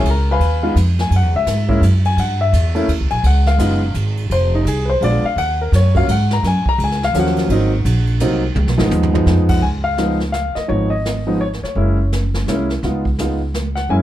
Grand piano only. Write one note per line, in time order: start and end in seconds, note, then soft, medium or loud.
0.10 0.29 A#4 medium
0.10 0.29 A#5 medium
0.31 0.75 B4 medium
0.31 0.75 F5 medium
0.31 0.75 G#5 medium
0.31 0.75 B5 loud
0.63 0.75 G#3 medium
0.63 0.75 B3 medium
0.63 0.75 D#4 medium
0.63 0.75 F4 medium
1.01 1.12 G#5 medium
1.16 1.35 F#5 medium
1.36 1.80 E5 loud
1.68 1.81 G#3 medium
1.68 1.81 A#3 medium
1.68 1.81 C#4 medium
1.68 1.81 E4 medium
2.06 2.18 G#5 loud
2.20 2.40 F#5 medium
2.41 2.86 E5 medium
2.75 2.87 A3 medium
2.75 2.87 A#3 medium
2.75 2.88 C#4 medium
2.75 2.88 E4 medium
3.11 3.24 G#5 loud
3.27 3.47 F#5 medium
3.47 3.92 F5 medium
3.59 3.79 G#3 medium
3.59 3.79 B3 medium
3.59 3.80 D#4 medium
3.59 3.80 F4 medium
4.32 4.53 C5 medium
4.55 4.67 D#4 medium
4.68 4.88 G#4 medium
4.85 4.87 B4 medium
4.90 5.02 C5 medium
5.02 5.22 G#3 medium
5.02 5.22 B3 medium
5.02 5.22 D4 medium
5.02 5.22 F4 medium
5.02 5.24 D5 medium
5.25 5.38 F5 medium
5.38 5.59 F#5 loud
5.61 5.73 A#4 medium
5.76 5.96 C#5 medium
5.95 6.07 F#3 medium
5.95 6.07 A#3 medium
5.95 6.07 C#4 medium
5.95 6.07 F4 medium
5.95 6.09 F5 loud
6.11 6.31 F#5 medium
6.33 6.45 A#5 loud
6.47 6.67 G#5 loud
6.69 6.80 A#5 loud
6.84 7.03 G#5 medium
7.04 7.16 F5 loud
7.15 7.50 F3 medium
7.15 7.49 F#3 medium
7.15 7.50 A#3 medium
7.15 7.50 C#4 medium
7.20 8.19 F#5 medium
7.51 7.70 F#3 medium
7.51 7.71 A#3 medium
7.51 7.71 C4 medium
7.51 7.71 D#4 medium
8.21 8.41 F#3 medium
8.21 8.41 A#3 medium
8.21 8.41 C4 medium
8.21 8.41 D#4 medium
8.78 9.11 F3 medium
8.78 9.11 G#3 medium
8.78 9.12 B3 medium
8.78 9.12 D#4 medium
9.13 9.60 F3 medium
9.13 9.60 G#3 medium
9.13 9.60 B3 medium
9.13 9.60 D#4 medium
9.49 9.63 F#5 medium
9.62 9.67 G#5 medium
9.84 10.18 F5 loud
9.98 10.18 F3 medium
9.98 10.18 G#3 medium
9.98 10.18 B3 medium
9.98 10.19 D#4 medium
10.32 10.56 F5 medium
10.55 10.70 D#5 medium
10.68 10.89 F3 medium
10.68 10.89 G#3 soft
10.68 10.89 B3 soft
10.68 10.89 D#4 medium
10.68 10.92 C#5 medium
10.90 11.37 D#5 medium
11.27 11.39 F3 medium
11.27 11.39 G#3 medium
11.27 11.39 B3 medium
11.27 11.40 D#4 medium
11.41 11.46 C#5 medium
11.64 12.09 C#5 medium
11.76 11.96 G#3 medium
11.76 11.96 A#3 medium
11.76 11.97 C#4 medium
11.76 11.97 E4 medium
12.48 12.68 G#3 medium
12.48 12.68 A#3 medium
12.48 12.68 C#4 medium
12.48 12.68 E4 medium
12.84 13.04 G#3 medium
12.84 13.04 B3 medium
12.84 13.04 D#4 soft
12.84 13.04 F4 medium
13.20 13.39 G#3 medium
13.20 13.39 B3 medium
13.20 13.39 D#4 medium
13.20 13.40 F4 medium
13.75 13.90 F#5 medium
13.90 14.02 G#3 medium
13.90 14.02 A#3 medium
13.90 14.02 C#4 medium
13.90 14.02 E4 medium
13.90 13.95 G#5 loud